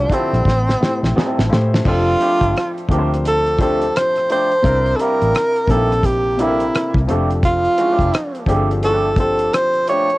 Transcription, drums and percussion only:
0.10 kick, closed hi-hat
0.34 cross-stick, closed hi-hat
0.45 kick, snare
0.69 snare
0.83 snare
1.04 snare
1.18 snare
1.39 snare
1.53 snare
1.74 snare
1.85 kick, crash
2.21 closed hi-hat
2.41 kick, closed hi-hat
2.57 cross-stick, closed hi-hat
2.78 closed hi-hat
2.89 kick, closed hi-hat
3.14 cross-stick, closed hi-hat
3.25 closed hi-hat
3.46 closed hi-hat
3.59 kick, closed hi-hat
3.82 closed hi-hat
3.96 cross-stick, closed hi-hat
4.16 cross-stick, closed hi-hat
4.30 closed hi-hat
4.52 closed hi-hat
4.64 kick, closed hi-hat
4.86 closed hi-hat
4.99 closed hi-hat
5.22 closed hi-hat
5.35 cross-stick, closed hi-hat
5.56 closed hi-hat
5.67 kick, closed hi-hat
5.92 cross-stick, closed hi-hat
6.03 kick, closed hi-hat
6.39 closed hi-hat
6.60 closed hi-hat
6.75 cross-stick, closed hi-hat
6.94 kick, cross-stick
7.09 closed hi-hat
7.30 closed hi-hat
7.43 kick, closed hi-hat
7.65 closed hi-hat
7.78 closed hi-hat
7.99 kick, closed hi-hat
8.14 cross-stick, closed hi-hat
8.35 closed hi-hat
8.46 kick, closed hi-hat
8.71 closed hi-hat
8.83 closed hi-hat
9.16 kick, closed hi-hat
9.39 closed hi-hat
9.53 cross-stick, closed hi-hat
9.74 closed hi-hat
9.88 closed hi-hat
10.10 closed hi-hat

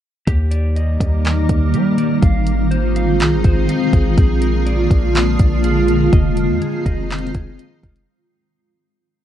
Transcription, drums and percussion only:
0.27 kick, closed hi-hat
0.51 closed hi-hat
0.76 closed hi-hat
1.00 kick, closed hi-hat
1.25 clap, closed hi-hat
1.49 kick, closed hi-hat
1.74 closed hi-hat
1.98 closed hi-hat
2.22 kick, closed hi-hat
2.47 closed hi-hat
2.71 closed hi-hat
2.96 closed hi-hat
3.20 clap, closed hi-hat
3.44 kick, closed hi-hat
3.69 closed hi-hat
3.93 kick, closed hi-hat
4.18 kick, closed hi-hat
4.42 closed hi-hat
4.67 closed hi-hat
4.91 kick, closed hi-hat
5.15 clap, closed hi-hat
5.39 kick, closed hi-hat
5.64 closed hi-hat
5.88 closed hi-hat
6.13 kick, closed hi-hat
6.37 closed hi-hat
6.62 closed hi-hat
6.86 kick, closed hi-hat
7.10 clap, closed hi-hat
7.18 closed hi-hat
7.27 closed hi-hat
7.34 kick, closed hi-hat
7.59 closed hi-hat
7.83 kick, closed hi-hat
7.96 closed hi-hat

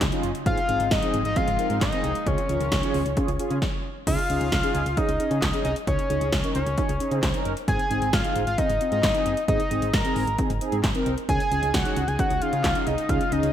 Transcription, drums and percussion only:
0.01 kick, snare, clap, closed hi-hat
0.12 closed hi-hat
0.23 closed hi-hat
0.35 closed hi-hat
0.46 kick, closed hi-hat
0.57 closed hi-hat
0.69 closed hi-hat
0.80 closed hi-hat
0.91 kick, snare, closed hi-hat
1.02 closed hi-hat
1.14 closed hi-hat
1.25 closed hi-hat
1.36 kick, closed hi-hat
1.48 closed hi-hat
1.59 closed hi-hat
1.70 closed hi-hat
1.81 kick, snare, clap, closed hi-hat
1.92 closed hi-hat
2.04 closed hi-hat
2.15 closed hi-hat
2.27 kick, closed hi-hat
2.38 closed hi-hat
2.49 closed hi-hat
2.60 closed hi-hat
2.72 kick, snare, closed hi-hat
2.83 closed hi-hat
2.94 open hi-hat
3.06 closed hi-hat
3.17 kick, closed hi-hat
3.28 closed hi-hat
3.39 closed hi-hat
3.51 closed hi-hat
3.62 kick, snare
4.07 kick, closed hi-hat, crash
4.18 closed hi-hat
4.30 closed hi-hat
4.41 closed hi-hat
4.52 kick, snare, closed hi-hat
4.63 closed hi-hat
4.75 closed hi-hat
4.86 closed hi-hat
4.97 kick, closed hi-hat
5.09 closed hi-hat
5.20 closed hi-hat
5.31 closed hi-hat
5.42 kick, snare, clap, closed hi-hat
5.54 closed hi-hat
5.65 closed hi-hat
5.76 closed hi-hat
5.87 kick, closed hi-hat
5.99 closed hi-hat
6.10 closed hi-hat
6.21 closed hi-hat
6.32 kick, snare, closed hi-hat
6.44 closed hi-hat
6.55 closed hi-hat
6.66 closed hi-hat
6.78 kick, closed hi-hat
6.89 closed hi-hat
7.00 closed hi-hat
7.11 closed hi-hat
7.23 kick, snare, clap, closed hi-hat
7.34 closed hi-hat
7.45 closed hi-hat
7.57 closed hi-hat
7.68 kick, closed hi-hat
7.79 closed hi-hat
7.91 closed hi-hat
8.02 closed hi-hat
8.13 kick, snare, closed hi-hat
8.24 closed hi-hat
8.36 closed hi-hat
8.47 closed hi-hat
8.58 kick, closed hi-hat
8.70 closed hi-hat
8.81 closed hi-hat
8.92 closed hi-hat
9.03 kick, snare, clap, closed hi-hat
9.15 closed hi-hat
9.26 closed hi-hat
9.37 closed hi-hat
9.48 kick, closed hi-hat
9.60 closed hi-hat
9.71 closed hi-hat
9.82 closed hi-hat
9.94 kick, snare, closed hi-hat
10.05 closed hi-hat
10.16 open hi-hat
10.27 closed hi-hat
10.38 kick, closed hi-hat
10.50 closed hi-hat
10.61 closed hi-hat
10.72 closed hi-hat
10.84 kick, snare, clap, closed hi-hat
10.95 closed hi-hat
11.06 closed hi-hat
11.18 closed hi-hat
11.29 kick, closed hi-hat
11.40 closed hi-hat
11.52 closed hi-hat
11.63 closed hi-hat
11.74 kick, snare, closed hi-hat
11.85 closed hi-hat
11.97 closed hi-hat
12.08 closed hi-hat
12.19 kick, closed hi-hat
12.30 closed hi-hat
12.42 closed hi-hat
12.53 closed hi-hat
12.64 kick, snare, clap, closed hi-hat
12.75 closed hi-hat
12.87 closed hi-hat
12.98 closed hi-hat
13.09 kick, closed hi-hat
13.21 closed hi-hat
13.32 closed hi-hat
13.43 closed hi-hat

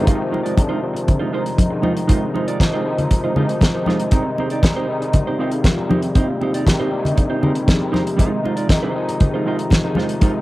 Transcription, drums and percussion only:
0.07 kick, closed hi-hat, muted conga
0.34 muted conga
0.46 closed hi-hat
0.58 kick, closed hi-hat, high conga
0.97 closed hi-hat
1.08 kick, closed hi-hat, muted conga, low conga
1.46 closed hi-hat
1.58 kick, closed hi-hat, high conga
1.83 high conga
1.97 closed hi-hat
2.09 kick, closed hi-hat, muted conga
2.36 muted conga
2.48 closed hi-hat
2.60 kick, snare, closed hi-hat, high conga
2.98 closed hi-hat, low conga
3.11 kick, closed hi-hat, muted conga
3.36 low conga
3.49 closed hi-hat
3.61 kick, snare, closed hi-hat, high conga
3.86 snare, high conga
4.00 closed hi-hat
4.11 kick, closed hi-hat, muted conga
4.38 muted conga
4.50 closed hi-hat
4.63 kick, snare, closed hi-hat, high conga
5.02 closed hi-hat
5.13 kick, closed hi-hat, muted conga, low conga
5.51 closed hi-hat
5.64 kick, snare, closed hi-hat, high conga
5.91 high conga
6.02 closed hi-hat
6.15 kick, closed hi-hat, muted conga
6.41 muted conga
6.54 closed hi-hat
6.67 kick, snare, closed hi-hat, high conga
7.05 closed hi-hat, low conga
7.18 kick, closed hi-hat, muted conga
7.43 low conga
7.55 closed hi-hat
7.68 kick, snare, closed hi-hat, high conga
7.94 snare, high conga
8.07 closed hi-hat
8.19 kick, closed hi-hat, muted conga
8.46 muted conga
8.57 closed hi-hat
8.69 kick, snare, closed hi-hat, high conga
9.09 closed hi-hat
9.20 kick, closed hi-hat, muted conga, low conga
9.59 closed hi-hat
9.70 kick, snare, closed hi-hat, high conga
9.95 snare, high conga
10.09 closed hi-hat
10.21 kick, closed hi-hat, muted conga

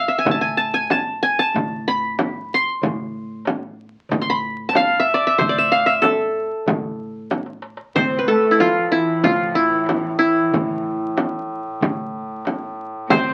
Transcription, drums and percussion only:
0.25 darbuka dum, frame drum
0.59 darbuka ka
0.90 darbuka tek, frame drum
1.55 darbuka dum, frame drum
1.71 darbuka ka
2.19 darbuka tek, frame drum
2.34 darbuka ka
2.82 darbuka dum, frame drum
2.99 darbuka ka
3.15 darbuka ka
3.45 darbuka tek, frame drum
4.09 darbuka dum, frame drum
4.26 darbuka ka
4.43 darbuka ka
4.73 darbuka tek, frame drum
4.91 darbuka ka
5.38 darbuka dum, frame drum
5.54 darbuka ka
5.71 darbuka ka
6.02 darbuka tek, frame drum
6.52 darbuka ka
6.66 darbuka dum, frame drum
6.82 darbuka ka
6.99 darbuka ka
7.31 darbuka tek, frame drum
7.46 darbuka ka
7.62 darbuka tek
7.77 darbuka ka
7.95 darbuka dum, frame drum
8.59 darbuka tek, frame drum
9.24 frame drum, darbuka dum
9.39 darbuka ka
9.86 darbuka tek, frame drum
10.51 darbuka dum, frame drum
11.17 darbuka tek, frame drum
11.64 darbuka ka
11.80 darbuka dum, frame drum
11.96 darbuka ka
12.45 darbuka tek, frame drum
12.62 darbuka ka
12.93 darbuka ka
13.09 darbuka dum, frame drum

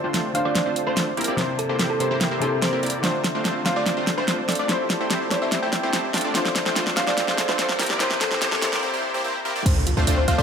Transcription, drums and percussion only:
0.14 snare, closed hi-hat
0.35 closed hi-hat
0.55 snare, closed hi-hat
0.76 closed hi-hat
0.97 snare, closed hi-hat
1.17 closed hi-hat
1.21 closed hi-hat
1.24 closed hi-hat
1.38 snare, closed hi-hat
1.59 closed hi-hat
1.79 snare, closed hi-hat
2.00 closed hi-hat
2.21 snare, closed hi-hat
2.42 closed hi-hat
2.62 snare, closed hi-hat
2.83 closed hi-hat
2.86 closed hi-hat
2.90 closed hi-hat
3.04 snare, closed hi-hat
3.24 snare, closed hi-hat
3.45 snare, closed hi-hat
3.66 snare, closed hi-hat
3.86 snare, closed hi-hat
4.07 snare, closed hi-hat
4.28 snare, closed hi-hat
4.49 snare, closed hi-hat, open hi-hat
4.55 closed hi-hat
4.69 snare, closed hi-hat
4.90 snare, closed hi-hat
5.10 snare, closed hi-hat
5.31 snare, closed hi-hat
5.52 snare, closed hi-hat
5.73 snare, closed hi-hat
5.93 snare, closed hi-hat
6.14 snare, closed hi-hat, open hi-hat
6.21 closed hi-hat
6.35 snare, closed hi-hat
6.45 snare
6.56 snare, closed hi-hat
6.66 snare
6.76 snare, closed hi-hat
6.87 snare
6.97 snare, closed hi-hat
7.07 snare
7.18 snare, closed hi-hat
7.28 snare
7.38 snare, closed hi-hat
7.49 snare
7.59 snare, closed hi-hat
7.69 snare
7.79 snare, closed hi-hat, open hi-hat
7.86 snare, closed hi-hat
8.00 snare, closed hi-hat
8.11 snare
8.21 snare, closed hi-hat
8.31 snare
8.42 snare, closed hi-hat
8.52 snare
8.62 snare, closed hi-hat
8.73 snare
9.66 kick, closed hi-hat, crash
9.87 closed hi-hat
10.07 closed hi-hat
10.28 closed hi-hat

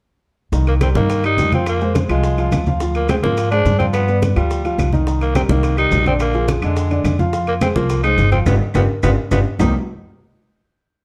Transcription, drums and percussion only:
0.53 high bongo, high conga, maracas
0.67 high bongo, high conga, high timbale, maracas
0.81 high bongo, high conga, high timbale, claves, maracas
0.95 high bongo, high conga, maracas
1.10 high bongo, high conga, high timbale, maracas
1.24 high bongo, high conga, high timbale, claves, maracas
1.38 high bongo, low bongo, high conga, low timbale, maracas
1.52 high conga, high timbale, maracas
1.66 high bongo, high conga, high timbale, claves, maracas
1.81 high bongo, high conga, maracas
1.95 high bongo, high conga, high timbale, maracas
2.09 high bongo, high conga, high timbale, claves, maracas
2.24 high bongo, high conga, maracas
2.38 high bongo, high conga, high timbale, maracas
2.52 high bongo, low bongo, high conga, high timbale, claves, maracas
2.66 high conga, maracas
2.80 high bongo, high conga, maracas
2.94 high bongo, high conga, high timbale, maracas
3.09 high bongo, high conga, high timbale, claves, maracas
3.23 high conga, maracas
3.37 high bongo, high conga, high timbale, maracas
3.51 high bongo, high conga, high timbale, claves, maracas
3.66 high bongo, low bongo, high conga, maracas
3.79 high conga, high timbale, maracas
3.93 high bongo, high conga, high timbale, claves, maracas
4.08 high bongo, high conga, maracas
4.22 high bongo, high conga, high timbale, maracas
4.36 high bongo, high conga, high timbale, claves, maracas
4.51 high bongo, high conga, maracas
4.65 high bongo, high conga, high timbale, maracas
4.78 high bongo, low bongo, high conga, high timbale, claves, maracas
4.93 high conga, maracas
5.07 high bongo, high conga, maracas
5.21 high bongo, high conga, high timbale, maracas
5.35 high bongo, high conga, high timbale, claves, maracas
5.49 high bongo, high conga, maracas
5.63 high bongo, high conga, high timbale, maracas
5.77 high bongo, high conga, high timbale, claves, maracas
5.91 high bongo, low bongo, high conga, low timbale, maracas
6.05 high conga, high timbale, maracas
6.20 high bongo, high conga, high timbale, claves, maracas
6.34 high bongo, high conga, maracas
6.48 high bongo, high conga, high timbale, maracas
6.62 high bongo, high conga, high timbale, claves, maracas
6.76 high bongo, high conga, maracas
6.91 high bongo, high conga, high timbale, maracas
7.05 high bongo, low bongo, high conga, high timbale, claves, maracas
7.19 high conga, maracas
7.33 high bongo, high conga, maracas
7.47 high bongo, high conga, high timbale, maracas
7.61 high bongo, high conga, high timbale, claves, maracas
7.76 high bongo, high conga, maracas
7.90 high bongo, high conga, high timbale, maracas
8.04 high bongo, high conga, high timbale, claves, maracas
8.18 high bongo, low bongo, high conga, maracas
8.32 high conga, high timbale, maracas
8.46 low bongo, high conga, high timbale, claves, maracas
8.74 low bongo, high conga, high timbale, claves, maracas
9.03 low bongo, high conga, high timbale, claves, maracas
9.31 low bongo, high conga, high timbale, claves, maracas
9.60 low bongo, low conga, low timbale, claves, maracas

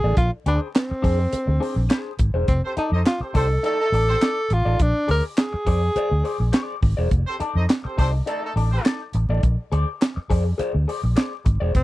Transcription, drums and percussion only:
0.17 kick, closed hi-hat
0.46 closed hi-hat
0.75 snare, clap, closed hi-hat
1.04 kick, open hi-hat
1.33 closed hi-hat
1.63 open hi-hat
1.90 snare, clap, closed hi-hat
2.19 kick, closed hi-hat
2.48 kick, closed hi-hat
2.77 closed hi-hat
3.06 snare, clap, closed hi-hat
3.35 kick, open hi-hat
3.64 closed hi-hat
3.94 open hi-hat
4.21 snare, clap, closed hi-hat
4.50 closed hi-hat
4.79 kick, closed hi-hat
5.09 open hi-hat
5.37 snare, clap, closed hi-hat
5.67 kick, open hi-hat
5.96 closed hi-hat
6.25 open hi-hat
6.53 snare, clap, closed hi-hat
6.82 kick, open hi-hat
7.11 kick, closed hi-hat
7.40 closed hi-hat
7.70 snare, clap, closed hi-hat
7.98 kick, open hi-hat
8.27 closed hi-hat
8.57 open hi-hat
8.85 snare, clap, closed hi-hat
9.13 closed hi-hat
9.43 kick, closed hi-hat
9.72 closed hi-hat
10.02 snare, clap, closed hi-hat
10.30 kick, open hi-hat
10.59 closed hi-hat
10.89 open hi-hat
11.17 snare, clap, closed hi-hat
11.46 kick, closed hi-hat
11.75 kick, closed hi-hat

